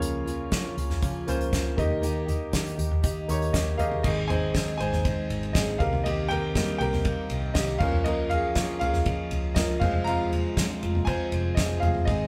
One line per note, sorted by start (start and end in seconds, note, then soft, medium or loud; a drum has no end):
0.00 0.49 C#2 loud
0.00 0.28 C#3 medium
0.00 0.48 C#3 medium
0.00 0.28 F3 medium
0.00 0.29 A#3 medium
0.00 0.57 A#3 medium
0.00 0.27 C#4 medium
0.00 0.57 C#4 medium
0.00 0.25 F4 medium
0.00 0.57 F4 medium
0.00 0.58 C#5 medium
0.00 1.79 F5 medium
0.00 closed hi-hat medium
0.26 0.51 A#3 soft
0.26 0.52 C#4 soft
0.26 0.52 F4 medium
0.26 closed hi-hat medium
0.51 0.77 F3 medium
0.51 0.77 A#3 medium
0.51 0.77 C#4 medium
0.51 0.75 F4 medium
0.51 kick medium
0.51 snare loud
0.51 closed hi-hat medium
0.76 1.08 C#2 medium
0.76 1.01 A#3 soft
0.76 1.02 C#4 soft
0.76 1.02 F4 medium
0.76 closed hi-hat medium
0.90 snare soft
0.90 floor tom medium
1.01 1.52 C#3 medium
1.01 1.50 F3 medium
1.01 1.52 A#3 medium
1.01 1.52 C#4 medium
1.01 1.53 F4 medium
1.01 kick loud
1.01 closed hi-hat medium
1.27 1.48 C#2 medium
1.27 1.65 A#3 medium
1.27 1.65 C#4 medium
1.27 1.65 F4 medium
1.27 1.66 C5 medium
1.27 closed hi-hat medium
1.41 closed hi-hat soft
1.51 1.73 C#2 medium
1.51 1.77 F3 medium
1.51 1.78 A#3 medium
1.51 1.78 C#4 medium
1.51 1.76 F4 medium
1.51 kick loud
1.51 snare loud
1.51 closed hi-hat medium
1.76 2.50 D#2 medium
1.76 2.49 D#3 medium
1.76 2.58 A#3 medium
1.76 2.01 A#3 soft
1.76 2.58 D#4 medium
1.76 2.02 D#4 soft
1.76 2.02 G4 soft
1.76 2.59 G4 medium
1.76 2.59 D#5 medium
1.76 kick medium
1.76 closed hi-hat medium
1.76 floor tom medium
1.90 floor tom medium
2.01 2.27 D#3 medium
2.01 2.28 A#3 medium
2.01 2.28 D#4 medium
2.01 2.25 G4 medium
2.01 closed hi-hat medium
2.27 2.52 A#3 soft
2.27 2.53 D#4 soft
2.27 2.53 G4 medium
2.27 closed hi-hat medium
2.27 floor tom medium
2.52 2.78 D#3 medium
2.52 2.78 A#3 medium
2.52 2.78 D#4 medium
2.52 2.76 G4 medium
2.52 kick medium
2.52 snare loud
2.52 closed hi-hat medium
2.66 closed hi-hat medium
2.77 3.09 D#2 medium
2.77 3.02 A#3 soft
2.77 3.03 D#4 soft
2.77 3.03 G4 medium
2.77 closed hi-hat medium
2.91 floor tom medium
3.02 3.53 D#3 medium
3.02 3.53 A#3 medium
3.02 3.55 D#4 loud
3.02 3.54 G4 medium
3.02 kick loud
3.02 closed hi-hat medium
3.28 3.49 D#2 medium
3.28 3.66 A#3 medium
3.28 3.66 D#4 medium
3.28 3.54 G4 medium
3.28 3.67 C#5 medium
3.28 closed hi-hat medium
3.42 closed hi-hat soft
3.53 3.75 D#2 medium
3.53 3.79 D#3 medium
3.53 3.79 A#3 medium
3.53 3.79 D#4 medium
3.53 3.78 G4 medium
3.53 3.77 G4 medium
3.53 3.78 D#5 medium
3.53 kick loud
3.53 snare loud
3.53 closed hi-hat medium
3.78 4.00 D#2 medium
3.78 3.97 A#3 medium
3.78 4.05 A#3 soft
3.78 3.98 D#4 medium
3.78 4.04 D#4 soft
3.78 4.04 G4 medium
3.78 3.98 G4 medium
3.78 4.03 G#4 medium
3.78 3.98 D#5 medium
3.78 4.04 F5 medium
3.78 closed hi-hat medium
3.78 floor tom medium
3.92 floor tom medium
4.03 4.64 G#1 loud
4.03 4.54 G#2 medium
4.03 6.04 D#3 medium
4.03 4.52 G#3 medium
4.03 4.54 C4 medium
4.03 4.55 D#4 medium
4.03 4.28 G#4 medium
4.03 4.55 G#4 medium
4.03 4.27 D#5 medium
4.03 kick loud
4.03 crash loud
4.28 4.62 G#3 medium
4.28 4.63 C4 soft
4.28 4.63 D#4 medium
4.28 4.76 C5 medium
4.28 4.76 G#5 loud
4.28 floor tom medium
4.28 ride medium
4.53 4.79 G#3 medium
4.53 4.80 C4 medium
4.53 4.78 D#4 medium
4.53 4.77 G#4 medium
4.53 kick loud
4.53 snare loud
4.53 ride medium
4.68 ride soft
4.77 5.11 G#1 medium
4.77 5.04 C4 medium
4.77 5.05 D#4 medium
4.77 5.04 G#4 medium
4.77 5.51 C5 medium
4.77 5.56 G#5 loud
4.77 ride medium
4.82 5.02 G#3 soft
4.93 snare soft
4.93 floor tom medium
5.04 5.52 G#3 medium
5.04 5.55 C4 medium
5.04 5.56 D#4 medium
5.04 5.56 G#4 medium
5.04 kick loud
5.04 ride medium
5.30 5.50 G#1 loud
5.30 ride medium
5.43 ride soft
5.53 5.76 G#1 loud
5.53 5.79 G#3 medium
5.53 5.80 C4 medium
5.53 5.80 D#4 medium
5.53 5.79 G#4 medium
5.53 5.80 D#5 medium
5.53 kick loud
5.53 snare loud
5.53 ride medium
5.78 6.52 C2 loud
5.78 6.04 A#3 soft
5.78 6.05 C4 medium
5.78 6.05 G4 medium
5.78 6.04 A#4 medium
5.78 6.05 F5 medium
5.78 kick loud
5.78 floor tom medium
5.78 ride medium
5.93 floor tom medium
6.04 6.55 C3 medium
6.04 6.53 D#3 medium
6.04 6.55 A#3 medium
6.04 6.55 C4 medium
6.04 6.12 G4 medium
6.04 6.56 G4 medium
6.04 6.09 D#5 medium
6.04 ride medium
6.28 6.78 A#4 medium
6.28 6.77 G5 loud
6.28 floor tom medium
6.28 ride medium
6.54 6.80 D#3 medium
6.54 6.89 G3 medium
6.54 6.80 A#3 medium
6.54 6.89 A#3 medium
6.54 6.80 C4 medium
6.54 6.89 D#4 medium
6.54 6.78 G4 medium
6.54 kick loud
6.54 snare loud
6.54 ride medium
6.68 ride soft
6.78 7.11 C2 loud
6.78 7.06 C4 medium
6.78 7.05 G4 medium
6.78 7.52 A#4 medium
6.78 7.51 G5 loud
6.78 ride medium
6.83 7.05 A#3 soft
6.93 snare soft
6.93 floor tom medium
7.05 7.54 D#3 medium
7.05 7.56 A#3 medium
7.05 7.56 C4 medium
7.05 7.57 G4 medium
7.05 kick loud
7.05 ride medium
7.30 7.51 C2 loud
7.30 ride medium
7.54 7.76 C2 loud
7.54 7.80 D#3 medium
7.54 7.81 A#3 medium
7.54 7.82 C4 medium
7.54 7.80 G4 medium
7.54 7.81 D#5 medium
7.54 kick loud
7.54 snare loud
7.54 ride medium
7.58 7.80 G4 medium
7.78 8.53 C#2 loud
7.78 8.55 F3 medium
7.78 8.55 A#3 medium
7.78 8.55 C#4 medium
7.78 8.06 C#4 medium
7.78 8.06 F4 medium
7.78 8.04 A#4 medium
7.78 8.06 F5 loud
7.78 kick loud
7.78 floor tom medium
7.78 crash medium
7.83 8.05 A#3 soft
7.93 floor tom medium
8.04 8.56 C#3 medium
8.04 8.55 F3 medium
8.04 8.56 A#3 medium
8.04 8.57 C#4 medium
8.04 8.58 F4 medium
8.04 8.30 A#4 medium
8.04 8.31 D#5 medium
8.04 ride medium
8.29 8.78 G#4 medium
8.29 8.78 F5 loud
8.29 floor tom medium
8.29 ride medium
8.55 8.81 F3 medium
8.55 8.79 F3 soft
8.55 8.79 A#3 soft
8.55 8.82 A#3 medium
8.55 8.79 C#4 medium
8.55 8.81 C#4 medium
8.55 8.79 F4 medium
8.55 kick loud
8.55 snare loud
8.55 ride medium
8.79 9.12 C#2 medium
8.79 9.07 C#4 medium
8.79 9.06 F4 medium
8.79 9.53 G#4 medium
8.79 9.52 F5 loud
8.79 ride medium
8.84 9.06 A#3 soft
8.93 snare soft
8.93 floor tom medium
9.06 9.55 F3 medium
9.06 9.56 A#3 medium
9.06 9.57 C#4 medium
9.06 9.59 F4 medium
9.06 kick loud
9.06 ride medium
9.31 9.52 C#2 loud
9.31 ride medium
9.55 9.77 C#2 loud
9.55 9.81 F3 medium
9.55 9.82 A#3 medium
9.55 9.82 C#4 medium
9.55 9.81 A#4 medium
9.55 9.82 D#5 medium
9.55 kick loud
9.55 snare loud
9.55 ride medium
9.59 9.80 F4 medium
9.80 10.54 F1 medium
9.80 10.53 F3 medium
9.80 10.53 G#3 medium
9.80 10.07 G#3 soft
9.80 10.07 C4 medium
9.80 10.54 C4 medium
9.80 10.06 F4 medium
9.80 10.06 G#4 medium
9.80 10.06 F5 medium
9.80 kick loud
9.80 floor tom medium
9.80 crash medium
9.84 10.06 F3 soft
9.94 floor tom medium
10.04 10.57 F2 medium
10.04 10.57 C3 medium
10.04 10.55 F3 medium
10.04 10.58 G#3 medium
10.04 11.04 F5 medium
10.04 11.09 A#5 loud
10.04 ride medium
10.08 10.59 C4 medium
10.08 10.58 F4 medium
10.32 floor tom medium
10.32 ride medium
10.57 10.82 F3 medium
10.57 10.83 G#3 medium
10.57 10.82 C4 medium
10.57 10.80 F4 medium
10.57 kick loud
10.57 snare loud
10.57 ride medium
10.81 11.13 F1 loud
10.81 11.05 F3 medium
10.81 11.06 G#3 soft
10.81 11.08 C4 medium
10.81 11.07 F4 medium
10.81 ride medium
10.95 floor tom medium
11.05 11.55 F3 medium
11.05 11.58 G#3 medium
11.05 11.59 C4 medium
11.05 11.54 C5 medium
11.05 11.58 G#5 loud
11.05 kick loud
11.05 ride medium
11.10 11.59 F4 medium
11.32 11.53 F1 loud
11.32 ride medium
11.55 11.78 F1 loud
11.55 11.82 F3 medium
11.55 11.83 G#3 medium
11.55 11.81 G#4 medium
11.55 11.82 D#5 medium
11.55 kick loud
11.55 snare loud
11.55 ride medium
11.59 11.82 C4 medium
11.59 11.80 F4 medium
11.80 12.03 F1 loud
11.80 12.07 C4 medium
11.80 12.07 F4 medium
11.80 12.06 G#4 medium
11.80 12.07 F5 medium
11.80 floor tom medium
11.80 ride soft
11.84 12.08 F3 soft
11.84 12.07 G#3 soft
11.95 floor tom medium
12.05 12.27 G#1 loud
12.05 12.27 G#2 medium
12.05 12.27 D#3 medium
12.05 12.27 G#3 medium
12.05 12.27 C4 medium
12.05 12.27 D#4 medium
12.05 12.27 G#4 medium
12.05 12.27 D#5 medium
12.05 kick loud
12.05 ride medium
12.09 12.27 G#4 medium